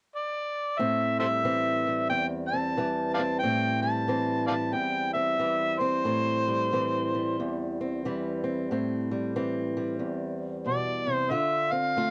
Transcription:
0.16 D5
0.79 A2 C4 E5
1.20 G3 A4 C5 E5
1.45 E3 C4
1.87 G3
2.10 E2 G5
2.48 A5
2.53 C4
2.77 E3 G3
3.14 D5 F5 A5
3.19 C4
3.39 C4 G5
3.43 A2
3.82 G3 A5
4.08 E3 C4
4.47 G3 D5 F5 A5
4.73 E2 G5
5.14 C4 E5
5.40 E3 G3
5.79 C4 C5
6.05 A2 C4
6.48 G3
6.73 E3 C4
7.14 G3
7.39 E2
7.81 C4
8.05 E3 G3
8.44 C4
8.71 A2 C4
9.11 G3
9.36 E3 C4
9.77 G3
9.99 E2
10.66 B2 D5
11.07 C3
11.13 C5
11.30 D3 F4 E5
11.72 C4 F5
11.97 A3 F4

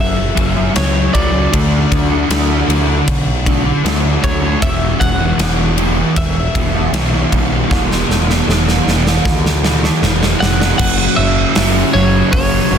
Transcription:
Already playing: F#2
0.00 F#1 E5
0.35 F#1 F#2 C#3 F#3, kick, ride
0.54 muted distorted electric guitar stroke
0.74 C#2 F#2 C#3 F#3 C#5, snare, ride
0.93 C#3 F#3
1.12 C#2 F#2 C#3 F#3 D5, kick, ride
1.32 C#3 F#3
1.51 D2 D3 A3 D4, kick, ride
1.92 D2, kick, ride
2.10 A3 D4
2.29 D2 D3 A3 D4, snare, ride
2.67 D2 D3 A3 D4, ride
2.88 muted distorted electric guitar stroke
3.08 B1, kick, ride
3.46 D3 A3 D4, kick, ride
3.64 muted distorted electric guitar stroke
3.84 D2 D3 A3 D4, snare, ride
4.02 A3 D4
4.22 D2 D3 A3 D4 C#5, kick, ride
4.41 A3 D4
4.61 E1 E2 B2 E3 E5, kick, ride
5.00 E1 F#5, kick, ride
5.19 B2 E3
5.38 E1 E2 B2 E3, snare, ride
5.77 E2 B2 E3, ride
5.97 muted distorted electric guitar stroke
6.16 E1 E5, kick, ride
6.55 E1 E2 B2 E3, kick, ride
6.73 muted distorted electric guitar stroke
6.92 B1 E2 B2 E3, snare, ride
7.12 B2 E3
7.32 B1 E2 B2 E3, kick, ride
7.51 B2 E3
7.70 E1 E2 B2 E3, kick, snare
7.92 snare
8.09 E1, snare
8.29 B2 E3, snare
8.47 E1 E2 B2 E3, snare
8.68 snare
8.87 E1 E2 B2 E3, snare
9.06 muted distorted electric guitar stroke, snare
9.25 D2, kick, snare
9.46 snare
9.63 E2 B2 E3, snare
9.83 muted distorted electric guitar stroke, snare
10.02 E1 E2 B2 E3, snare
10.22 B2 E3, snare
10.40 F1 E2 B2 E3 F#5, snare
10.60 B2 E3, snare
10.78 F#1 F#2 C#3 F#3 F#5, kick, crash
11.16 F#1 C#3 F#3 E5
11.55 F#1 F#2 C#3 F#3, snare, open hi-hat
11.93 F#1 C#3 F#3 C#5
12.32 F#1 F#2 C#3 F#3 C#5, kick, open hi-hat
12.70 F#1 C#3 F#3

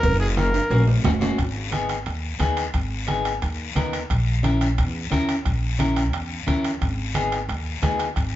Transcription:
Already playing: A#4
0.03 F#1, bombo low, cowbell, high conga, long guiro
0.20 G#4
0.36 A#3 C#4 F#4 A#4, bombo rim, high conga, short guiro
0.54 high timbale, short guiro
0.70 A#1 A#3 C#4 F#4, cowbell, high conga, low timbale, long guiro
0.88 low timbale
1.04 F#1 A#3 C#4 F#4, bombo low, bombo rim, high conga, low conga, low timbale, short guiro
1.20 A#3 C#4 F#4, low conga, low timbale, short guiro
1.38 G#1, bombo low, bombo rim, high conga, high timbale, long guiro
1.71 B3 D#4 G#4, bombo rim, high conga, high timbale, short guiro
1.89 bombo rim, high timbale, short guiro
2.06 D#2, bombo rim, high conga, high timbale, long guiro
2.39 D#2 B3 D#4 G#4, bombo low, bombo rim, high conga, high timbale, short guiro
2.57 bombo rim, high timbale, short guiro
2.74 G#1, bombo low, bombo rim, high conga, high timbale, long guiro
3.07 B3 D#4 G#4, bombo rim, high conga, high timbale, short guiro
3.25 bombo rim, high timbale, short guiro
3.42 D#2, bombo rim, high conga, high timbale, long guiro
3.75 D#2 B3 D#4 A#4, bombo low, bombo rim, high conga, high timbale, short guiro
3.93 bombo rim, high timbale, short guiro
4.09 A#1, bombo low, bombo rim, high conga, high timbale, long guiro
4.43 C#4 E4 A#4, bombo rim, high conga, high timbale, short guiro
4.61 bombo rim, high timbale, short guiro
4.77 E2, bombo rim, high conga, high timbale, long guiro
5.11 E2 C#4 E4 A#4, bombo low, bombo rim, high conga, high timbale, short guiro
5.29 bombo rim, high timbale, short guiro
5.45 A#1, bombo low, bombo rim, high conga, high timbale, long guiro
5.79 C#4 E4 A#4, bombo rim, high conga, high timbale, short guiro
5.96 bombo rim, high timbale, short guiro
6.13 E2, bombo rim, high conga, high timbale, long guiro
6.47 E2 C#4 E4 A#4, bombo low, bombo rim, high conga, high timbale, short guiro
6.64 bombo rim, high timbale, short guiro
6.81 G#1, bombo low, bombo rim, high conga, high timbale, long guiro
7.15 B3 D#4 G#4, bombo rim, high conga, high timbale, short guiro
7.32 bombo rim, high timbale, short guiro
7.49 D#2, bombo rim, high conga, high timbale, long guiro
7.82 D#2 B3 D#4 G#4, bombo low, bombo rim, high conga, high timbale, low timbale, short guiro
7.99 bombo rim, high timbale, short guiro
8.16 G#1, bombo low, bombo rim, high conga, high timbale, long guiro

